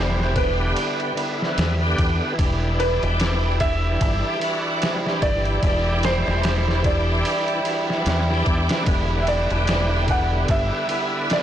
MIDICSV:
0, 0, Header, 1, 6, 480
1, 0, Start_track
1, 0, Key_signature, 1, "minor"
1, 0, Tempo, 810811
1, 1414, Time_signature, 4, 2, 24, 8
1, 6765, End_track
2, 0, Start_track
2, 0, Title_t, "Felt piano"
2, 0, Program_c, 0, 0
2, 0, Note_on_c, 0, 72, 98
2, 221, Note_on_c, 0, 71, 92
2, 229, Note_off_c, 0, 72, 0
2, 914, Note_off_c, 0, 71, 0
2, 1656, Note_on_c, 0, 71, 107
2, 2111, Note_off_c, 0, 71, 0
2, 2134, Note_on_c, 0, 76, 116
2, 3094, Note_on_c, 0, 74, 118
2, 3123, Note_off_c, 0, 76, 0
2, 3550, Note_off_c, 0, 74, 0
2, 3580, Note_on_c, 0, 72, 94
2, 4060, Note_on_c, 0, 74, 85
2, 4071, Note_off_c, 0, 72, 0
2, 4753, Note_off_c, 0, 74, 0
2, 5462, Note_on_c, 0, 76, 73
2, 5495, Note_off_c, 0, 76, 0
2, 5496, Note_on_c, 0, 74, 98
2, 5982, Note_on_c, 0, 78, 99
2, 5989, Note_off_c, 0, 74, 0
2, 6221, Note_on_c, 0, 76, 103
2, 6225, Note_off_c, 0, 78, 0
2, 6673, Note_off_c, 0, 76, 0
2, 6706, Note_on_c, 0, 74, 97
2, 6765, Note_off_c, 0, 74, 0
2, 6765, End_track
3, 0, Start_track
3, 0, Title_t, "Tonewheel organ"
3, 0, Program_c, 1, 16
3, 0, Note_on_c, 1, 47, 67
3, 0, Note_on_c, 1, 50, 71
3, 0, Note_on_c, 1, 67, 81
3, 177, Note_off_c, 1, 50, 0
3, 192, Note_off_c, 1, 47, 0
3, 199, Note_on_c, 1, 50, 81
3, 203, Note_off_c, 1, 67, 0
3, 211, Note_on_c, 1, 59, 79
3, 223, Note_on_c, 1, 67, 90
3, 666, Note_off_c, 1, 50, 0
3, 672, Note_off_c, 1, 59, 0
3, 678, Note_off_c, 1, 67, 0
3, 681, Note_on_c, 1, 50, 70
3, 693, Note_on_c, 1, 59, 68
3, 706, Note_on_c, 1, 64, 81
3, 1033, Note_off_c, 1, 50, 0
3, 1038, Note_off_c, 1, 59, 0
3, 1045, Note_off_c, 1, 64, 0
3, 1059, Note_on_c, 1, 50, 89
3, 1070, Note_on_c, 1, 59, 80
3, 1083, Note_on_c, 1, 67, 102
3, 1383, Note_off_c, 1, 50, 0
3, 1383, Note_on_c, 1, 52, 76
3, 1388, Note_off_c, 1, 59, 0
3, 1395, Note_off_c, 1, 67, 0
3, 1409, Note_on_c, 1, 62, 72
3, 1434, Note_on_c, 1, 67, 86
3, 2094, Note_off_c, 1, 52, 0
3, 2107, Note_off_c, 1, 62, 0
3, 2117, Note_on_c, 1, 52, 78
3, 2119, Note_off_c, 1, 67, 0
3, 2130, Note_on_c, 1, 62, 81
3, 2143, Note_on_c, 1, 67, 86
3, 2585, Note_off_c, 1, 52, 0
3, 2591, Note_off_c, 1, 62, 0
3, 2598, Note_off_c, 1, 67, 0
3, 2602, Note_on_c, 1, 52, 74
3, 2618, Note_on_c, 1, 62, 63
3, 2627, Note_on_c, 1, 66, 85
3, 2953, Note_off_c, 1, 52, 0
3, 2961, Note_off_c, 1, 62, 0
3, 2966, Note_off_c, 1, 66, 0
3, 2985, Note_on_c, 1, 52, 95
3, 2995, Note_on_c, 1, 62, 78
3, 3009, Note_on_c, 1, 67, 106
3, 3305, Note_off_c, 1, 52, 0
3, 3311, Note_off_c, 1, 62, 0
3, 3313, Note_on_c, 1, 52, 76
3, 3318, Note_off_c, 1, 67, 0
3, 3339, Note_on_c, 1, 62, 71
3, 3364, Note_on_c, 1, 67, 87
3, 4019, Note_off_c, 1, 52, 0
3, 4032, Note_off_c, 1, 62, 0
3, 4038, Note_on_c, 1, 52, 84
3, 4044, Note_off_c, 1, 67, 0
3, 4052, Note_on_c, 1, 62, 75
3, 4064, Note_on_c, 1, 67, 96
3, 4505, Note_off_c, 1, 52, 0
3, 4513, Note_off_c, 1, 62, 0
3, 4518, Note_off_c, 1, 67, 0
3, 4522, Note_on_c, 1, 52, 74
3, 4536, Note_on_c, 1, 62, 70
3, 4548, Note_on_c, 1, 66, 82
3, 4873, Note_off_c, 1, 52, 0
3, 4880, Note_off_c, 1, 62, 0
3, 4886, Note_off_c, 1, 66, 0
3, 4901, Note_on_c, 1, 52, 92
3, 4914, Note_on_c, 1, 62, 85
3, 4923, Note_on_c, 1, 67, 104
3, 5224, Note_off_c, 1, 52, 0
3, 5227, Note_on_c, 1, 50, 74
3, 5230, Note_off_c, 1, 62, 0
3, 5235, Note_off_c, 1, 67, 0
3, 5252, Note_on_c, 1, 59, 71
3, 5275, Note_on_c, 1, 67, 86
3, 5936, Note_off_c, 1, 50, 0
3, 5949, Note_off_c, 1, 59, 0
3, 5960, Note_off_c, 1, 67, 0
3, 5961, Note_on_c, 1, 50, 85
3, 5973, Note_on_c, 1, 59, 77
3, 5982, Note_on_c, 1, 67, 92
3, 6427, Note_off_c, 1, 50, 0
3, 6433, Note_off_c, 1, 59, 0
3, 6437, Note_off_c, 1, 67, 0
3, 6437, Note_on_c, 1, 50, 72
3, 6450, Note_on_c, 1, 59, 66
3, 6463, Note_on_c, 1, 64, 77
3, 6765, Note_off_c, 1, 50, 0
3, 6765, Note_off_c, 1, 59, 0
3, 6765, Note_off_c, 1, 64, 0
3, 6765, End_track
4, 0, Start_track
4, 0, Title_t, "Violin section"
4, 0, Program_c, 2, 48
4, 0, Note_on_c, 2, 55, 80
4, 0, Note_on_c, 2, 64, 80
4, 1399, Note_off_c, 2, 55, 0
4, 1399, Note_off_c, 2, 64, 0
4, 1406, Note_on_c, 2, 55, 84
4, 1406, Note_on_c, 2, 64, 90
4, 6765, Note_off_c, 2, 55, 0
4, 6765, Note_off_c, 2, 64, 0
4, 6765, End_track
5, 0, Start_track
5, 0, Title_t, "Fingered electric bass"
5, 0, Program_c, 3, 33
5, 0, Note_on_c, 3, 28, 97
5, 434, Note_off_c, 3, 28, 0
5, 935, Note_on_c, 3, 40, 82
5, 1150, Note_off_c, 3, 40, 0
5, 1175, Note_on_c, 3, 40, 89
5, 1296, Note_off_c, 3, 40, 0
5, 1415, Note_on_c, 3, 28, 96
5, 1766, Note_off_c, 3, 28, 0
5, 1792, Note_on_c, 3, 28, 90
5, 2354, Note_off_c, 3, 28, 0
5, 2375, Note_on_c, 3, 31, 95
5, 2496, Note_off_c, 3, 31, 0
5, 3092, Note_on_c, 3, 31, 78
5, 3308, Note_off_c, 3, 31, 0
5, 3332, Note_on_c, 3, 28, 102
5, 3685, Note_off_c, 3, 28, 0
5, 3714, Note_on_c, 3, 28, 97
5, 4275, Note_off_c, 3, 28, 0
5, 4774, Note_on_c, 3, 40, 80
5, 4989, Note_off_c, 3, 40, 0
5, 5013, Note_on_c, 3, 40, 92
5, 5135, Note_off_c, 3, 40, 0
5, 5251, Note_on_c, 3, 28, 106
5, 5604, Note_off_c, 3, 28, 0
5, 5631, Note_on_c, 3, 28, 94
5, 6194, Note_off_c, 3, 28, 0
5, 6212, Note_on_c, 3, 31, 95
5, 6334, Note_off_c, 3, 31, 0
5, 6765, End_track
6, 0, Start_track
6, 0, Title_t, "Drums"
6, 118, Note_on_c, 9, 38, 39
6, 177, Note_off_c, 9, 38, 0
6, 212, Note_on_c, 9, 51, 69
6, 213, Note_on_c, 9, 36, 100
6, 271, Note_off_c, 9, 51, 0
6, 272, Note_off_c, 9, 36, 0
6, 453, Note_on_c, 9, 51, 84
6, 512, Note_off_c, 9, 51, 0
6, 591, Note_on_c, 9, 51, 40
6, 650, Note_off_c, 9, 51, 0
6, 695, Note_on_c, 9, 51, 70
6, 754, Note_off_c, 9, 51, 0
6, 842, Note_on_c, 9, 38, 40
6, 901, Note_off_c, 9, 38, 0
6, 934, Note_on_c, 9, 51, 84
6, 942, Note_on_c, 9, 38, 107
6, 993, Note_off_c, 9, 51, 0
6, 1001, Note_off_c, 9, 38, 0
6, 1175, Note_on_c, 9, 36, 92
6, 1175, Note_on_c, 9, 51, 74
6, 1234, Note_off_c, 9, 36, 0
6, 1234, Note_off_c, 9, 51, 0
6, 1414, Note_on_c, 9, 36, 101
6, 1414, Note_on_c, 9, 51, 87
6, 1473, Note_off_c, 9, 51, 0
6, 1474, Note_off_c, 9, 36, 0
6, 1657, Note_on_c, 9, 51, 67
6, 1716, Note_off_c, 9, 51, 0
6, 1792, Note_on_c, 9, 51, 46
6, 1851, Note_off_c, 9, 51, 0
6, 1893, Note_on_c, 9, 51, 91
6, 1901, Note_on_c, 9, 38, 113
6, 1952, Note_off_c, 9, 51, 0
6, 1960, Note_off_c, 9, 38, 0
6, 2132, Note_on_c, 9, 51, 73
6, 2134, Note_on_c, 9, 36, 103
6, 2191, Note_off_c, 9, 51, 0
6, 2193, Note_off_c, 9, 36, 0
6, 2373, Note_on_c, 9, 51, 87
6, 2374, Note_on_c, 9, 36, 105
6, 2432, Note_off_c, 9, 51, 0
6, 2433, Note_off_c, 9, 36, 0
6, 2614, Note_on_c, 9, 51, 67
6, 2673, Note_off_c, 9, 51, 0
6, 2852, Note_on_c, 9, 51, 82
6, 2861, Note_on_c, 9, 38, 102
6, 2912, Note_off_c, 9, 51, 0
6, 2920, Note_off_c, 9, 38, 0
6, 2999, Note_on_c, 9, 38, 42
6, 3058, Note_off_c, 9, 38, 0
6, 3091, Note_on_c, 9, 51, 73
6, 3092, Note_on_c, 9, 36, 94
6, 3150, Note_off_c, 9, 51, 0
6, 3151, Note_off_c, 9, 36, 0
6, 3229, Note_on_c, 9, 51, 42
6, 3288, Note_off_c, 9, 51, 0
6, 3331, Note_on_c, 9, 51, 80
6, 3332, Note_on_c, 9, 36, 108
6, 3390, Note_off_c, 9, 51, 0
6, 3391, Note_off_c, 9, 36, 0
6, 3571, Note_on_c, 9, 51, 82
6, 3579, Note_on_c, 9, 38, 108
6, 3630, Note_off_c, 9, 51, 0
6, 3638, Note_off_c, 9, 38, 0
6, 3717, Note_on_c, 9, 38, 52
6, 3776, Note_off_c, 9, 38, 0
6, 3809, Note_on_c, 9, 51, 91
6, 3818, Note_on_c, 9, 38, 111
6, 3869, Note_off_c, 9, 51, 0
6, 3877, Note_off_c, 9, 38, 0
6, 3957, Note_on_c, 9, 38, 41
6, 4016, Note_off_c, 9, 38, 0
6, 4051, Note_on_c, 9, 51, 70
6, 4052, Note_on_c, 9, 36, 98
6, 4110, Note_off_c, 9, 51, 0
6, 4111, Note_off_c, 9, 36, 0
6, 4293, Note_on_c, 9, 51, 89
6, 4352, Note_off_c, 9, 51, 0
6, 4428, Note_on_c, 9, 51, 41
6, 4487, Note_off_c, 9, 51, 0
6, 4530, Note_on_c, 9, 51, 69
6, 4589, Note_off_c, 9, 51, 0
6, 4677, Note_on_c, 9, 38, 41
6, 4737, Note_off_c, 9, 38, 0
6, 4771, Note_on_c, 9, 51, 77
6, 4779, Note_on_c, 9, 38, 97
6, 4830, Note_off_c, 9, 51, 0
6, 4838, Note_off_c, 9, 38, 0
6, 4916, Note_on_c, 9, 38, 38
6, 4976, Note_off_c, 9, 38, 0
6, 5009, Note_on_c, 9, 51, 63
6, 5012, Note_on_c, 9, 36, 93
6, 5068, Note_off_c, 9, 51, 0
6, 5071, Note_off_c, 9, 36, 0
6, 5146, Note_on_c, 9, 51, 76
6, 5154, Note_on_c, 9, 38, 107
6, 5205, Note_off_c, 9, 51, 0
6, 5213, Note_off_c, 9, 38, 0
6, 5248, Note_on_c, 9, 51, 88
6, 5251, Note_on_c, 9, 36, 112
6, 5307, Note_off_c, 9, 51, 0
6, 5310, Note_off_c, 9, 36, 0
6, 5488, Note_on_c, 9, 51, 73
6, 5547, Note_off_c, 9, 51, 0
6, 5627, Note_on_c, 9, 51, 48
6, 5686, Note_off_c, 9, 51, 0
6, 5727, Note_on_c, 9, 51, 95
6, 5735, Note_on_c, 9, 38, 124
6, 5786, Note_off_c, 9, 51, 0
6, 5795, Note_off_c, 9, 38, 0
6, 5967, Note_on_c, 9, 51, 73
6, 5970, Note_on_c, 9, 36, 97
6, 6026, Note_off_c, 9, 51, 0
6, 6030, Note_off_c, 9, 36, 0
6, 6206, Note_on_c, 9, 51, 83
6, 6210, Note_on_c, 9, 36, 116
6, 6266, Note_off_c, 9, 51, 0
6, 6269, Note_off_c, 9, 36, 0
6, 6447, Note_on_c, 9, 51, 73
6, 6506, Note_off_c, 9, 51, 0
6, 6689, Note_on_c, 9, 51, 78
6, 6697, Note_on_c, 9, 38, 107
6, 6748, Note_off_c, 9, 51, 0
6, 6756, Note_off_c, 9, 38, 0
6, 6765, End_track
0, 0, End_of_file